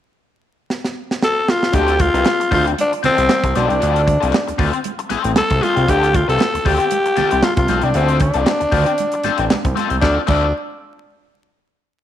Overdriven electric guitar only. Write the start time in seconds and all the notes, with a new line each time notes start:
1.73 C4 F4 A4
2.00 muted overdriven electric guitar stroke
2.14 C4 F4 B4
2.40 muted overdriven electric guitar stroke
2.51 C4 F4 A4
2.66 muted overdriven electric guitar stroke
2.92 muted overdriven electric guitar stroke
3.03 C4 F4 A4
3.18 muted overdriven electric guitar stroke
3.30 muted overdriven electric guitar stroke
3.44 muted overdriven electric guitar stroke
3.56 C4 F4 A4
3.69 muted overdriven electric guitar stroke
3.80 C4 F4 A4
4.07 muted overdriven electric guitar stroke
4.20 C4 F4 A4
4.47 muted overdriven electric guitar stroke
4.58 C4 F4 B4
4.73 muted overdriven electric guitar stroke
4.99 muted overdriven electric guitar stroke
5.09 C4 F4 A4
5.24 muted overdriven electric guitar stroke
5.50 muted overdriven electric guitar stroke
5.61 C4 F4 A4
5.76 muted overdriven electric guitar stroke
5.87 C4 F4 A4
6.13 muted overdriven electric guitar stroke
6.28 C4 F4 B4
6.54 muted overdriven electric guitar stroke
6.65 C4 F4 A4
6.79 muted overdriven electric guitar stroke
7.06 muted overdriven electric guitar stroke
7.16 C4 F4 A4
7.31 muted overdriven electric guitar stroke
7.43 muted overdriven electric guitar stroke
7.58 muted overdriven electric guitar stroke
7.69 C4 F4 A4
7.83 muted overdriven electric guitar stroke
7.95 C4 F4 A4
8.21 muted overdriven electric guitar stroke
8.34 C4 F4 A4
8.60 muted overdriven electric guitar stroke
8.72 C4 F4 B4
8.87 muted overdriven electric guitar stroke
9.14 muted overdriven electric guitar stroke
9.25 C4 F4 A4
9.39 muted overdriven electric guitar stroke
9.65 muted overdriven electric guitar stroke
9.76 C4 F4 A4
9.90 muted overdriven electric guitar stroke
10.02 C4 F4 A4
10.27 C4 F4 A4